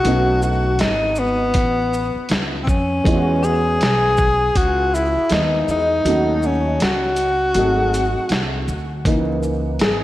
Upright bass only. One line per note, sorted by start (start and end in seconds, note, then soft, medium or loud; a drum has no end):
0.05 0.76 B1 loud
0.80 1.51 G#1 medium
1.55 2.13 A1 medium
2.16 muted upright bass stroke soft
2.30 2.66 C#2 medium
2.68 3.03 F2 medium
3.05 3.77 E2 loud
3.81 4.52 B1 medium
4.55 5.13 C#2 medium
5.16 muted upright bass stroke soft
5.31 5.66 D#2 loud
5.68 6.04 E2 loud
6.05 6.76 D#2 loud
6.81 7.52 C#2 medium
7.55 8.13 G#1 medium
8.16 muted upright bass stroke soft
8.30 8.66 C2 medium
8.68 9.03 D2 medium
9.05 9.76 C#2 loud
9.80 10.04 G#1 medium